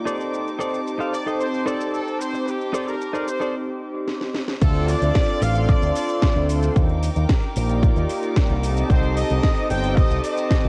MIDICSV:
0, 0, Header, 1, 8, 480
1, 0, Start_track
1, 0, Tempo, 535714
1, 295, Time_signature, 4, 2, 24, 8
1, 9576, End_track
2, 0, Start_track
2, 0, Title_t, "Violin section"
2, 0, Program_c, 0, 48
2, 0, Note_on_c, 0, 86, 75
2, 52, Note_on_c, 0, 63, 66
2, 53, Note_on_c, 0, 60, 74
2, 55, Note_on_c, 0, 81, 67
2, 3139, Note_off_c, 0, 86, 0
2, 3142, Note_off_c, 0, 63, 0
2, 3143, Note_off_c, 0, 60, 0
2, 3144, Note_off_c, 0, 81, 0
2, 4132, Note_on_c, 0, 84, 88
2, 4134, Note_on_c, 0, 74, 75
2, 4135, Note_on_c, 0, 69, 78
2, 4135, Note_on_c, 0, 77, 76
2, 6034, Note_off_c, 0, 84, 0
2, 6035, Note_off_c, 0, 74, 0
2, 6036, Note_off_c, 0, 69, 0
2, 6036, Note_off_c, 0, 77, 0
2, 6053, Note_on_c, 0, 86, 89
2, 6054, Note_on_c, 0, 63, 73
2, 6054, Note_on_c, 0, 70, 81
2, 6055, Note_on_c, 0, 79, 73
2, 7718, Note_off_c, 0, 70, 0
2, 7718, Note_off_c, 0, 79, 0
2, 7734, Note_on_c, 0, 81, 76
2, 7736, Note_on_c, 0, 72, 84
2, 9576, Note_off_c, 0, 63, 0
2, 9576, Note_off_c, 0, 72, 0
2, 9576, Note_off_c, 0, 81, 0
2, 9576, Note_off_c, 0, 86, 0
2, 9576, End_track
3, 0, Start_track
3, 0, Title_t, "Trumpet section"
3, 0, Program_c, 1, 61
3, 1014, Note_on_c, 1, 74, 96
3, 1123, Note_off_c, 1, 74, 0
3, 1255, Note_on_c, 1, 72, 100
3, 1478, Note_off_c, 1, 72, 0
3, 1497, Note_on_c, 1, 69, 89
3, 1725, Note_off_c, 1, 69, 0
3, 1735, Note_on_c, 1, 69, 90
3, 1958, Note_off_c, 1, 69, 0
3, 1977, Note_on_c, 1, 72, 92
3, 2216, Note_off_c, 1, 72, 0
3, 2217, Note_on_c, 1, 67, 90
3, 2576, Note_off_c, 1, 67, 0
3, 2576, Note_on_c, 1, 70, 91
3, 2935, Note_off_c, 1, 70, 0
3, 2935, Note_on_c, 1, 72, 81
3, 3158, Note_off_c, 1, 72, 0
3, 4139, Note_on_c, 1, 69, 93
3, 4360, Note_off_c, 1, 69, 0
3, 4374, Note_on_c, 1, 74, 107
3, 4855, Note_off_c, 1, 74, 0
3, 4855, Note_on_c, 1, 77, 108
3, 5095, Note_off_c, 1, 77, 0
3, 5096, Note_on_c, 1, 74, 108
3, 5323, Note_off_c, 1, 74, 0
3, 5334, Note_on_c, 1, 74, 95
3, 5781, Note_off_c, 1, 74, 0
3, 7988, Note_on_c, 1, 72, 97
3, 8205, Note_off_c, 1, 72, 0
3, 8219, Note_on_c, 1, 75, 106
3, 8664, Note_off_c, 1, 75, 0
3, 8695, Note_on_c, 1, 79, 110
3, 8918, Note_off_c, 1, 79, 0
3, 8931, Note_on_c, 1, 75, 106
3, 9159, Note_off_c, 1, 75, 0
3, 9170, Note_on_c, 1, 75, 94
3, 9576, Note_off_c, 1, 75, 0
3, 9576, End_track
4, 0, Start_track
4, 0, Title_t, "Clean electric guitar"
4, 0, Program_c, 2, 27
4, 47, Note_on_c, 2, 63, 86
4, 51, Note_on_c, 2, 69, 77
4, 56, Note_on_c, 2, 72, 78
4, 60, Note_on_c, 2, 74, 92
4, 435, Note_off_c, 2, 63, 0
4, 437, Note_off_c, 2, 69, 0
4, 440, Note_off_c, 2, 72, 0
4, 442, Note_off_c, 2, 74, 0
4, 526, Note_on_c, 2, 63, 105
4, 532, Note_on_c, 2, 69, 93
4, 536, Note_on_c, 2, 72, 97
4, 540, Note_on_c, 2, 74, 116
4, 710, Note_off_c, 2, 63, 0
4, 714, Note_off_c, 2, 69, 0
4, 716, Note_off_c, 2, 72, 0
4, 718, Note_off_c, 2, 74, 0
4, 886, Note_on_c, 2, 63, 84
4, 894, Note_on_c, 2, 69, 61
4, 896, Note_on_c, 2, 72, 75
4, 900, Note_on_c, 2, 77, 92
4, 1011, Note_off_c, 2, 63, 0
4, 1013, Note_off_c, 2, 69, 0
4, 1015, Note_off_c, 2, 72, 0
4, 1018, Note_off_c, 2, 77, 0
4, 1131, Note_on_c, 2, 63, 82
4, 1135, Note_on_c, 2, 69, 75
4, 1140, Note_on_c, 2, 72, 75
4, 1145, Note_on_c, 2, 75, 91
4, 1313, Note_off_c, 2, 63, 0
4, 1315, Note_off_c, 2, 69, 0
4, 1317, Note_off_c, 2, 72, 0
4, 1320, Note_off_c, 2, 75, 0
4, 1486, Note_on_c, 2, 63, 108
4, 1491, Note_on_c, 2, 69, 98
4, 1495, Note_on_c, 2, 72, 99
4, 1500, Note_on_c, 2, 74, 121
4, 1791, Note_off_c, 2, 63, 0
4, 1793, Note_off_c, 2, 69, 0
4, 1795, Note_off_c, 2, 72, 0
4, 1798, Note_off_c, 2, 74, 0
4, 2447, Note_on_c, 2, 63, 106
4, 2453, Note_on_c, 2, 69, 99
4, 2458, Note_on_c, 2, 72, 98
4, 2462, Note_on_c, 2, 74, 114
4, 2631, Note_off_c, 2, 63, 0
4, 2634, Note_off_c, 2, 69, 0
4, 2636, Note_off_c, 2, 72, 0
4, 2638, Note_off_c, 2, 74, 0
4, 2807, Note_on_c, 2, 63, 81
4, 2811, Note_on_c, 2, 69, 76
4, 2817, Note_on_c, 2, 72, 76
4, 2824, Note_on_c, 2, 74, 78
4, 2931, Note_off_c, 2, 63, 0
4, 2933, Note_off_c, 2, 69, 0
4, 2936, Note_off_c, 2, 72, 0
4, 2938, Note_off_c, 2, 74, 0
4, 3047, Note_on_c, 2, 63, 83
4, 3053, Note_on_c, 2, 69, 78
4, 3057, Note_on_c, 2, 72, 78
4, 3061, Note_on_c, 2, 74, 92
4, 3171, Note_off_c, 2, 63, 0
4, 3174, Note_off_c, 2, 69, 0
4, 3176, Note_off_c, 2, 72, 0
4, 3178, Note_off_c, 2, 74, 0
4, 9576, End_track
5, 0, Start_track
5, 0, Title_t, "Analog synth pad"
5, 0, Program_c, 3, 89
5, 48, Note_on_c, 3, 60, 72
5, 51, Note_on_c, 3, 63, 67
5, 56, Note_on_c, 3, 67, 68
5, 62, Note_on_c, 3, 72, 67
5, 66, Note_on_c, 3, 86, 82
5, 3863, Note_off_c, 3, 60, 0
5, 3864, Note_off_c, 3, 63, 0
5, 3867, Note_off_c, 3, 67, 0
5, 3870, Note_off_c, 3, 72, 0
5, 3872, Note_off_c, 3, 86, 0
5, 4126, Note_on_c, 3, 60, 101
5, 4131, Note_on_c, 3, 62, 92
5, 4137, Note_on_c, 3, 65, 92
5, 4141, Note_on_c, 3, 69, 94
5, 4144, Note_on_c, 3, 74, 112
5, 4803, Note_off_c, 3, 60, 0
5, 4805, Note_off_c, 3, 62, 0
5, 4808, Note_off_c, 3, 65, 0
5, 4810, Note_off_c, 3, 69, 0
5, 4812, Note_off_c, 3, 74, 0
5, 4849, Note_on_c, 3, 60, 83
5, 4853, Note_on_c, 3, 62, 77
5, 4859, Note_on_c, 3, 65, 76
5, 4864, Note_on_c, 3, 69, 77
5, 4866, Note_on_c, 3, 74, 93
5, 5784, Note_off_c, 3, 60, 0
5, 5785, Note_off_c, 3, 62, 0
5, 5788, Note_off_c, 3, 65, 0
5, 5791, Note_off_c, 3, 69, 0
5, 5792, Note_off_c, 3, 74, 0
5, 5814, Note_on_c, 3, 60, 98
5, 5817, Note_on_c, 3, 62, 93
5, 5818, Note_on_c, 3, 65, 91
5, 5821, Note_on_c, 3, 69, 90
5, 5824, Note_on_c, 3, 72, 107
5, 5963, Note_off_c, 3, 60, 0
5, 5964, Note_off_c, 3, 62, 0
5, 5965, Note_off_c, 3, 65, 0
5, 5967, Note_off_c, 3, 69, 0
5, 5968, Note_off_c, 3, 72, 0
5, 6771, Note_on_c, 3, 58, 83
5, 6776, Note_on_c, 3, 63, 74
5, 6780, Note_on_c, 3, 65, 76
5, 6785, Note_on_c, 3, 67, 77
5, 6789, Note_on_c, 3, 74, 89
5, 7464, Note_off_c, 3, 58, 0
5, 7467, Note_off_c, 3, 63, 0
5, 7469, Note_off_c, 3, 65, 0
5, 7471, Note_off_c, 3, 67, 0
5, 7473, Note_off_c, 3, 74, 0
5, 7493, Note_on_c, 3, 58, 78
5, 7497, Note_on_c, 3, 63, 75
5, 7498, Note_on_c, 3, 65, 73
5, 7502, Note_on_c, 3, 67, 72
5, 7503, Note_on_c, 3, 74, 91
5, 7643, Note_off_c, 3, 58, 0
5, 7645, Note_off_c, 3, 63, 0
5, 7645, Note_off_c, 3, 65, 0
5, 7647, Note_off_c, 3, 67, 0
5, 7647, Note_off_c, 3, 74, 0
5, 7723, Note_on_c, 3, 60, 99
5, 7728, Note_on_c, 3, 63, 87
5, 7731, Note_on_c, 3, 67, 90
5, 7737, Note_on_c, 3, 69, 86
5, 7740, Note_on_c, 3, 75, 104
5, 8660, Note_off_c, 3, 60, 0
5, 8663, Note_off_c, 3, 63, 0
5, 8665, Note_off_c, 3, 67, 0
5, 8667, Note_off_c, 3, 69, 0
5, 8669, Note_off_c, 3, 75, 0
5, 8685, Note_on_c, 3, 60, 82
5, 8690, Note_on_c, 3, 63, 75
5, 8695, Note_on_c, 3, 67, 77
5, 8698, Note_on_c, 3, 69, 79
5, 8704, Note_on_c, 3, 75, 92
5, 9576, Note_off_c, 3, 60, 0
5, 9576, Note_off_c, 3, 63, 0
5, 9576, Note_off_c, 3, 67, 0
5, 9576, Note_off_c, 3, 69, 0
5, 9576, Note_off_c, 3, 75, 0
5, 9576, End_track
6, 0, Start_track
6, 0, Title_t, "Picked electric bass"
6, 0, Program_c, 4, 34
6, 4134, Note_on_c, 4, 38, 95
6, 4423, Note_off_c, 4, 38, 0
6, 4493, Note_on_c, 4, 38, 85
6, 4569, Note_off_c, 4, 38, 0
6, 4850, Note_on_c, 4, 33, 95
6, 5141, Note_off_c, 4, 33, 0
6, 5215, Note_on_c, 4, 38, 84
6, 5290, Note_off_c, 4, 38, 0
6, 5695, Note_on_c, 4, 38, 92
6, 5984, Note_off_c, 4, 38, 0
6, 6055, Note_on_c, 4, 39, 96
6, 6344, Note_off_c, 4, 39, 0
6, 6414, Note_on_c, 4, 39, 86
6, 6490, Note_off_c, 4, 39, 0
6, 6776, Note_on_c, 4, 34, 94
6, 7064, Note_off_c, 4, 34, 0
6, 7132, Note_on_c, 4, 39, 87
6, 7209, Note_off_c, 4, 39, 0
6, 7617, Note_on_c, 4, 36, 89
6, 7905, Note_off_c, 4, 36, 0
6, 7973, Note_on_c, 4, 36, 101
6, 8263, Note_off_c, 4, 36, 0
6, 8336, Note_on_c, 4, 36, 85
6, 8411, Note_off_c, 4, 36, 0
6, 8695, Note_on_c, 4, 31, 96
6, 8984, Note_off_c, 4, 31, 0
6, 9056, Note_on_c, 4, 36, 84
6, 9131, Note_off_c, 4, 36, 0
6, 9538, Note_on_c, 4, 36, 93
6, 9576, Note_off_c, 4, 36, 0
6, 9576, End_track
7, 0, Start_track
7, 0, Title_t, "Muted clean electric guitar strokes"
7, 2089, Note_on_c, 9, 29, 31
7, 2179, Note_off_c, 9, 29, 0
7, 9576, End_track
8, 0, Start_track
8, 0, Title_t, "Drums"
8, 61, Note_on_c, 9, 82, 66
8, 150, Note_off_c, 9, 82, 0
8, 182, Note_on_c, 9, 82, 29
8, 272, Note_off_c, 9, 82, 0
8, 303, Note_on_c, 9, 82, 38
8, 393, Note_off_c, 9, 82, 0
8, 422, Note_on_c, 9, 82, 19
8, 512, Note_off_c, 9, 82, 0
8, 542, Note_on_c, 9, 82, 64
8, 631, Note_off_c, 9, 82, 0
8, 663, Note_on_c, 9, 82, 28
8, 752, Note_off_c, 9, 82, 0
8, 782, Note_on_c, 9, 82, 39
8, 871, Note_off_c, 9, 82, 0
8, 902, Note_on_c, 9, 82, 19
8, 991, Note_off_c, 9, 82, 0
8, 1021, Note_on_c, 9, 82, 65
8, 1110, Note_off_c, 9, 82, 0
8, 1141, Note_on_c, 9, 82, 28
8, 1230, Note_off_c, 9, 82, 0
8, 1260, Note_on_c, 9, 82, 38
8, 1349, Note_off_c, 9, 82, 0
8, 1380, Note_on_c, 9, 82, 20
8, 1470, Note_off_c, 9, 82, 0
8, 1499, Note_on_c, 9, 82, 68
8, 1589, Note_off_c, 9, 82, 0
8, 1620, Note_on_c, 9, 82, 28
8, 1709, Note_off_c, 9, 82, 0
8, 1739, Note_on_c, 9, 82, 38
8, 1828, Note_off_c, 9, 82, 0
8, 1860, Note_on_c, 9, 82, 18
8, 1949, Note_off_c, 9, 82, 0
8, 1981, Note_on_c, 9, 82, 66
8, 2070, Note_off_c, 9, 82, 0
8, 2101, Note_on_c, 9, 82, 28
8, 2191, Note_off_c, 9, 82, 0
8, 2221, Note_on_c, 9, 82, 41
8, 2310, Note_off_c, 9, 82, 0
8, 2338, Note_on_c, 9, 82, 19
8, 2428, Note_off_c, 9, 82, 0
8, 2458, Note_on_c, 9, 82, 70
8, 2548, Note_off_c, 9, 82, 0
8, 2581, Note_on_c, 9, 82, 29
8, 2670, Note_off_c, 9, 82, 0
8, 2700, Note_on_c, 9, 82, 39
8, 2789, Note_off_c, 9, 82, 0
8, 2822, Note_on_c, 9, 82, 20
8, 2911, Note_off_c, 9, 82, 0
8, 2940, Note_on_c, 9, 82, 70
8, 3029, Note_off_c, 9, 82, 0
8, 3059, Note_on_c, 9, 82, 29
8, 3149, Note_off_c, 9, 82, 0
8, 3653, Note_on_c, 9, 38, 56
8, 3742, Note_off_c, 9, 38, 0
8, 3773, Note_on_c, 9, 38, 56
8, 3862, Note_off_c, 9, 38, 0
8, 3892, Note_on_c, 9, 38, 79
8, 3982, Note_off_c, 9, 38, 0
8, 4013, Note_on_c, 9, 38, 76
8, 4103, Note_off_c, 9, 38, 0
8, 4134, Note_on_c, 9, 42, 57
8, 4134, Note_on_c, 9, 49, 103
8, 4135, Note_on_c, 9, 36, 117
8, 4138, Note_on_c, 9, 82, 45
8, 4223, Note_off_c, 9, 42, 0
8, 4223, Note_off_c, 9, 49, 0
8, 4224, Note_off_c, 9, 36, 0
8, 4228, Note_off_c, 9, 82, 0
8, 4254, Note_on_c, 9, 42, 27
8, 4343, Note_off_c, 9, 42, 0
8, 4372, Note_on_c, 9, 46, 104
8, 4377, Note_on_c, 9, 82, 77
8, 4462, Note_off_c, 9, 46, 0
8, 4467, Note_off_c, 9, 82, 0
8, 4495, Note_on_c, 9, 42, 55
8, 4500, Note_on_c, 9, 82, 33
8, 4585, Note_off_c, 9, 42, 0
8, 4589, Note_off_c, 9, 82, 0
8, 4613, Note_on_c, 9, 38, 124
8, 4614, Note_on_c, 9, 36, 116
8, 4614, Note_on_c, 9, 42, 57
8, 4619, Note_on_c, 9, 82, 45
8, 4702, Note_off_c, 9, 38, 0
8, 4704, Note_off_c, 9, 36, 0
8, 4704, Note_off_c, 9, 42, 0
8, 4709, Note_off_c, 9, 82, 0
8, 4736, Note_on_c, 9, 42, 27
8, 4825, Note_off_c, 9, 42, 0
8, 4853, Note_on_c, 9, 46, 104
8, 4858, Note_on_c, 9, 82, 79
8, 4943, Note_off_c, 9, 46, 0
8, 4947, Note_off_c, 9, 82, 0
8, 4975, Note_on_c, 9, 42, 54
8, 4979, Note_on_c, 9, 82, 32
8, 5064, Note_off_c, 9, 42, 0
8, 5069, Note_off_c, 9, 82, 0
8, 5094, Note_on_c, 9, 36, 120
8, 5094, Note_on_c, 9, 42, 54
8, 5099, Note_on_c, 9, 82, 45
8, 5184, Note_off_c, 9, 36, 0
8, 5184, Note_off_c, 9, 42, 0
8, 5189, Note_off_c, 9, 82, 0
8, 5214, Note_on_c, 9, 42, 28
8, 5219, Note_on_c, 9, 82, 32
8, 5304, Note_off_c, 9, 42, 0
8, 5308, Note_off_c, 9, 82, 0
8, 5333, Note_on_c, 9, 46, 109
8, 5338, Note_on_c, 9, 82, 81
8, 5423, Note_off_c, 9, 46, 0
8, 5428, Note_off_c, 9, 82, 0
8, 5454, Note_on_c, 9, 42, 55
8, 5459, Note_on_c, 9, 82, 34
8, 5544, Note_off_c, 9, 42, 0
8, 5548, Note_off_c, 9, 82, 0
8, 5572, Note_on_c, 9, 38, 123
8, 5574, Note_on_c, 9, 42, 54
8, 5575, Note_on_c, 9, 36, 117
8, 5579, Note_on_c, 9, 82, 45
8, 5662, Note_off_c, 9, 38, 0
8, 5664, Note_off_c, 9, 36, 0
8, 5664, Note_off_c, 9, 42, 0
8, 5669, Note_off_c, 9, 82, 0
8, 5696, Note_on_c, 9, 42, 26
8, 5786, Note_off_c, 9, 42, 0
8, 5815, Note_on_c, 9, 46, 105
8, 5819, Note_on_c, 9, 82, 77
8, 5904, Note_off_c, 9, 46, 0
8, 5909, Note_off_c, 9, 82, 0
8, 5935, Note_on_c, 9, 42, 55
8, 5940, Note_on_c, 9, 82, 34
8, 6025, Note_off_c, 9, 42, 0
8, 6029, Note_off_c, 9, 82, 0
8, 6054, Note_on_c, 9, 42, 54
8, 6055, Note_on_c, 9, 36, 123
8, 6059, Note_on_c, 9, 82, 44
8, 6144, Note_off_c, 9, 42, 0
8, 6145, Note_off_c, 9, 36, 0
8, 6148, Note_off_c, 9, 82, 0
8, 6175, Note_on_c, 9, 42, 26
8, 6265, Note_off_c, 9, 42, 0
8, 6294, Note_on_c, 9, 46, 107
8, 6299, Note_on_c, 9, 82, 74
8, 6384, Note_off_c, 9, 46, 0
8, 6389, Note_off_c, 9, 82, 0
8, 6415, Note_on_c, 9, 42, 54
8, 6420, Note_on_c, 9, 82, 33
8, 6505, Note_off_c, 9, 42, 0
8, 6509, Note_off_c, 9, 82, 0
8, 6532, Note_on_c, 9, 38, 124
8, 6534, Note_on_c, 9, 42, 54
8, 6535, Note_on_c, 9, 36, 122
8, 6538, Note_on_c, 9, 82, 44
8, 6622, Note_off_c, 9, 38, 0
8, 6623, Note_off_c, 9, 42, 0
8, 6624, Note_off_c, 9, 36, 0
8, 6628, Note_off_c, 9, 82, 0
8, 6652, Note_on_c, 9, 42, 27
8, 6742, Note_off_c, 9, 42, 0
8, 6772, Note_on_c, 9, 46, 111
8, 6777, Note_on_c, 9, 82, 75
8, 6862, Note_off_c, 9, 46, 0
8, 6866, Note_off_c, 9, 82, 0
8, 6893, Note_on_c, 9, 42, 52
8, 6898, Note_on_c, 9, 82, 32
8, 6983, Note_off_c, 9, 42, 0
8, 6988, Note_off_c, 9, 82, 0
8, 7015, Note_on_c, 9, 36, 123
8, 7015, Note_on_c, 9, 42, 53
8, 7020, Note_on_c, 9, 82, 44
8, 7104, Note_off_c, 9, 36, 0
8, 7105, Note_off_c, 9, 42, 0
8, 7109, Note_off_c, 9, 82, 0
8, 7133, Note_on_c, 9, 42, 27
8, 7138, Note_on_c, 9, 82, 31
8, 7223, Note_off_c, 9, 42, 0
8, 7227, Note_off_c, 9, 82, 0
8, 7252, Note_on_c, 9, 46, 116
8, 7257, Note_on_c, 9, 82, 77
8, 7342, Note_off_c, 9, 46, 0
8, 7347, Note_off_c, 9, 82, 0
8, 7374, Note_on_c, 9, 42, 54
8, 7378, Note_on_c, 9, 82, 32
8, 7463, Note_off_c, 9, 42, 0
8, 7468, Note_off_c, 9, 82, 0
8, 7493, Note_on_c, 9, 38, 122
8, 7494, Note_on_c, 9, 36, 121
8, 7495, Note_on_c, 9, 42, 54
8, 7500, Note_on_c, 9, 82, 43
8, 7583, Note_off_c, 9, 38, 0
8, 7584, Note_off_c, 9, 36, 0
8, 7584, Note_off_c, 9, 42, 0
8, 7589, Note_off_c, 9, 82, 0
8, 7614, Note_on_c, 9, 42, 26
8, 7704, Note_off_c, 9, 42, 0
8, 7736, Note_on_c, 9, 46, 113
8, 7741, Note_on_c, 9, 82, 76
8, 7825, Note_off_c, 9, 46, 0
8, 7830, Note_off_c, 9, 82, 0
8, 7857, Note_on_c, 9, 42, 54
8, 7861, Note_on_c, 9, 82, 32
8, 7946, Note_off_c, 9, 42, 0
8, 7951, Note_off_c, 9, 82, 0
8, 7974, Note_on_c, 9, 36, 123
8, 7976, Note_on_c, 9, 42, 53
8, 7980, Note_on_c, 9, 82, 43
8, 8063, Note_off_c, 9, 36, 0
8, 8065, Note_off_c, 9, 42, 0
8, 8070, Note_off_c, 9, 82, 0
8, 8095, Note_on_c, 9, 42, 26
8, 8184, Note_off_c, 9, 42, 0
8, 8215, Note_on_c, 9, 46, 111
8, 8219, Note_on_c, 9, 82, 76
8, 8304, Note_off_c, 9, 46, 0
8, 8309, Note_off_c, 9, 82, 0
8, 8334, Note_on_c, 9, 42, 52
8, 8339, Note_on_c, 9, 82, 32
8, 8424, Note_off_c, 9, 42, 0
8, 8428, Note_off_c, 9, 82, 0
8, 8452, Note_on_c, 9, 38, 126
8, 8454, Note_on_c, 9, 36, 122
8, 8454, Note_on_c, 9, 42, 52
8, 8458, Note_on_c, 9, 82, 43
8, 8541, Note_off_c, 9, 38, 0
8, 8543, Note_off_c, 9, 42, 0
8, 8544, Note_off_c, 9, 36, 0
8, 8548, Note_off_c, 9, 82, 0
8, 8576, Note_on_c, 9, 42, 26
8, 8666, Note_off_c, 9, 42, 0
8, 8693, Note_on_c, 9, 46, 110
8, 8698, Note_on_c, 9, 82, 77
8, 8783, Note_off_c, 9, 46, 0
8, 8788, Note_off_c, 9, 82, 0
8, 8814, Note_on_c, 9, 42, 51
8, 8819, Note_on_c, 9, 82, 31
8, 8904, Note_off_c, 9, 42, 0
8, 8908, Note_off_c, 9, 82, 0
8, 8934, Note_on_c, 9, 36, 126
8, 8935, Note_on_c, 9, 42, 51
8, 8939, Note_on_c, 9, 82, 42
8, 9023, Note_off_c, 9, 36, 0
8, 9024, Note_off_c, 9, 42, 0
8, 9029, Note_off_c, 9, 82, 0
8, 9054, Note_on_c, 9, 42, 25
8, 9058, Note_on_c, 9, 82, 31
8, 9143, Note_off_c, 9, 42, 0
8, 9148, Note_off_c, 9, 82, 0
8, 9173, Note_on_c, 9, 46, 116
8, 9178, Note_on_c, 9, 82, 78
8, 9263, Note_off_c, 9, 46, 0
8, 9267, Note_off_c, 9, 82, 0
8, 9296, Note_on_c, 9, 42, 52
8, 9300, Note_on_c, 9, 82, 32
8, 9385, Note_off_c, 9, 42, 0
8, 9390, Note_off_c, 9, 82, 0
8, 9414, Note_on_c, 9, 36, 126
8, 9414, Note_on_c, 9, 38, 125
8, 9416, Note_on_c, 9, 42, 50
8, 9420, Note_on_c, 9, 82, 44
8, 9503, Note_off_c, 9, 36, 0
8, 9503, Note_off_c, 9, 38, 0
8, 9505, Note_off_c, 9, 42, 0
8, 9510, Note_off_c, 9, 82, 0
8, 9534, Note_on_c, 9, 42, 25
8, 9576, Note_off_c, 9, 42, 0
8, 9576, End_track
0, 0, End_of_file